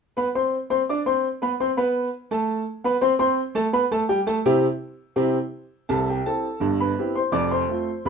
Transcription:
0.17 0.27 B3 medium
0.17 0.27 B4 medium
0.17 0.27 B5 medium
0.35 0.55 C4 medium
0.35 0.55 C5 medium
0.35 0.55 C6 medium
0.70 0.81 C4 medium
0.70 0.80 C5 medium
0.70 0.80 C6 medium
0.89 1.00 D4 medium
0.89 0.99 D5 medium
0.89 0.99 D6 medium
1.06 1.26 C4 medium
1.06 1.26 C5 medium
1.06 1.26 C6 medium
1.42 1.52 B3 medium
1.42 1.52 B4 medium
1.42 1.53 B5 medium
1.60 1.70 C4 medium
1.60 1.70 C5 medium
1.60 1.70 C6 medium
1.77 2.07 B3 medium
1.77 2.07 B4 medium
1.77 2.07 B5 medium
2.31 2.60 A3 medium
2.31 2.61 A4 medium
2.31 2.61 A5 medium
2.84 2.94 B3 medium
2.84 2.95 B4 medium
2.84 2.95 B5 medium
3.01 3.12 C4 medium
3.01 3.11 C5 medium
3.01 3.12 C6 medium
3.19 3.39 C4 medium
3.19 3.39 C5 medium
3.19 3.39 C6 loud
3.55 3.65 A3 medium
3.55 3.65 A4 medium
3.55 3.65 A5 medium
3.73 3.83 B3 medium
3.73 3.83 B4 medium
3.73 3.83 B5 medium
3.91 4.01 A3 medium
3.91 4.01 A4 medium
3.91 4.02 A5 medium
4.09 4.19 G3 medium
4.09 4.19 G4 medium
4.09 4.19 G5 medium
4.27 4.37 A3 medium
4.27 4.37 A4 medium
4.27 4.37 A5 medium
4.46 4.65 C3 loud
4.46 4.65 C4 medium
4.46 4.65 E4 medium
4.46 4.65 G4 medium
5.16 5.36 C3 medium
5.16 5.36 C4 medium
5.16 5.37 E4 medium
5.16 5.36 G4 medium
5.89 6.20 C2 medium
5.89 6.20 C3 medium
5.89 6.06 A4 medium
5.89 6.07 A5 medium
6.09 6.25 G4 soft
6.09 6.26 G5 medium
6.26 6.46 C4 soft
6.26 6.46 E4 soft
6.26 6.46 G4 soft
6.26 6.76 A4 medium
6.26 6.68 A5 medium
6.60 6.91 G1 medium
6.60 6.91 G2 medium
6.80 7.13 B4 medium
6.80 7.13 B5 medium
6.99 7.18 C4 soft
6.99 7.18 E4 soft
6.99 7.18 G4 medium
7.16 7.32 C5 medium
7.16 7.33 C6 medium
7.32 7.62 F1 medium
7.32 7.62 F2 medium
7.32 7.49 D5 medium
7.32 7.50 D6 medium
7.51 8.01 C5 medium
7.51 8.01 C6 medium
7.69 7.88 A3 soft
7.69 7.88 C4 soft
7.69 7.89 F4 soft
8.05 8.09 C2 medium

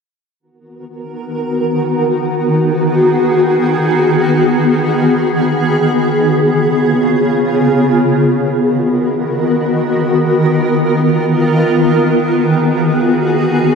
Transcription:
0.40 6.16 D#3 medium
0.40 8.10 B3 medium
0.40 6.16 F#4 medium
0.40 2.31 A#4 medium
2.33 4.25 G#4 medium
4.27 6.18 G#4 medium
6.21 8.12 C#3 medium
6.21 8.12 F4 medium
6.21 8.12 G#4 medium
8.13 13.75 D#3 medium
8.13 13.75 B3 medium
8.13 10.05 F#4 medium
8.13 11.97 A#4 medium
10.07 11.99 F4 medium
12.01 13.75 F#4 medium
12.01 13.75 G#4 medium

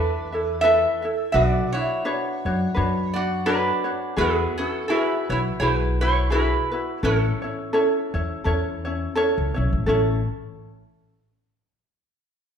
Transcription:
0.00 0.84 E2 medium
0.00 0.59 D4 medium
0.00 0.32 E4 medium
0.00 0.32 A4 medium
0.00 0.32 B4 medium
0.00 0.63 B4 medium
0.00 0.31 E5 medium
0.32 0.63 E4 soft
0.32 0.63 A4 soft
0.32 0.63 E5 soft
0.61 1.03 E4 medium
0.61 1.30 A4 medium
0.61 1.03 A4 medium
0.61 1.03 B4 medium
0.61 1.32 E5 medium
0.61 1.01 E5 medium
1.02 1.35 E4 soft
1.02 1.34 A4 soft
1.02 1.33 E5 medium
1.32 1.60 B1 loud
1.32 1.74 D4 medium
1.32 1.71 F#4 medium
1.32 1.73 F#4 medium
1.32 1.73 B4 medium
1.32 1.72 D5 medium
1.73 2.04 D4 soft
1.73 3.12 E4 medium
1.73 2.04 F#4 soft
1.73 3.20 C#5 medium
1.73 2.04 C#5 soft
2.05 2.45 D4 medium
2.05 2.45 F#4 medium
2.05 2.45 B4 medium
2.05 2.45 C#5 medium
2.45 2.65 F#2 medium
2.45 2.75 D4 soft
2.45 2.75 F#4 soft
2.45 2.76 C#5 medium
2.75 3.69 F#2 medium
2.75 3.15 D4 medium
2.75 3.14 F#4 medium
2.75 3.15 B4 medium
2.75 3.17 C#5 medium
3.14 3.45 D4 soft
3.14 3.46 F#4 soft
3.14 3.45 F#4 medium
3.14 3.44 D5 medium
3.46 3.85 D4 medium
3.46 4.15 D4 medium
3.46 3.84 F#4 medium
3.46 3.87 B4 medium
3.46 4.18 B4 medium
3.46 3.83 C#5 medium
3.84 4.17 D4 soft
3.84 4.16 F#4 soft
3.84 4.17 C#5 medium
4.17 4.44 E2 medium
4.17 4.58 E4 medium
4.17 4.58 F#4 medium
4.17 4.58 G#4 medium
4.17 4.57 G#4 medium
4.17 4.57 B4 loud
4.21 4.57 B3 medium
4.58 4.87 C#4 medium
4.58 4.89 E4 soft
4.58 4.89 F#4 soft
4.58 4.88 A4 medium
4.58 4.89 B4 soft
4.88 5.27 E4 medium
4.88 5.30 E4 medium
4.88 5.29 F#4 medium
4.88 5.29 G#4 medium
4.88 5.30 B4 medium
4.88 5.28 B4 medium
5.29 5.50 B1 medium
5.29 5.60 E4 soft
5.29 5.40 E4 medium
5.29 5.60 F#4 soft
5.29 5.60 B4 medium
5.29 5.38 C#5 medium
5.60 6.53 B1 medium
5.60 6.01 E4 medium
5.60 5.99 E4 medium
5.60 6.00 F#4 medium
5.60 6.01 G#4 medium
5.60 6.01 B4 medium
5.60 6.00 B4 medium
6.01 6.30 E4 medium
6.01 6.30 E4 soft
6.01 6.30 F#4 soft
6.01 6.30 B4 soft
6.01 6.32 C#5 medium
6.30 6.72 E4 medium
6.30 7.00 E4 medium
6.30 6.72 F#4 medium
6.30 6.71 G#4 medium
6.30 7.05 B4 medium
6.30 6.70 B4 medium
6.72 7.03 E4 soft
6.72 7.03 F#4 soft
6.72 7.03 B4 medium
7.03 7.29 A1 loud
7.03 7.43 C#4 medium
7.03 9.14 C#4 medium
7.03 7.43 E4 medium
7.03 7.41 A4 medium
7.03 9.13 A4 medium
7.03 7.41 C#5 medium
7.42 7.72 C#4 soft
7.42 7.73 E4 soft
7.42 7.73 C#5 soft
7.73 8.14 C#4 medium
7.73 8.13 E4 medium
7.73 8.14 A4 medium
7.73 8.13 C#5 medium
8.14 8.34 E2 medium
8.14 8.44 C#4 soft
8.14 8.45 E4 medium
8.14 8.45 C#5 medium
8.44 9.05 E2 medium
8.44 8.85 C#4 medium
8.44 8.85 E4 medium
8.44 8.85 A4 medium
8.44 8.84 C#5 medium
8.85 9.15 C#4 soft
8.85 9.15 E4 soft
8.85 9.16 C#5 medium
9.15 9.55 C#4 medium
9.15 9.55 E4 medium
9.15 9.56 A4 medium
9.15 9.53 C#5 loud
9.38 9.55 C#2 medium
9.54 9.71 B1 medium
9.54 9.87 C#4 soft
9.54 9.87 E4 soft
9.54 9.86 C#5 medium
9.73 9.86 A1 medium
9.86 10.25 A1 medium
9.86 10.20 C#4 medium
9.86 10.20 E4 medium
9.86 10.19 A4 medium
9.86 10.21 C#5 medium

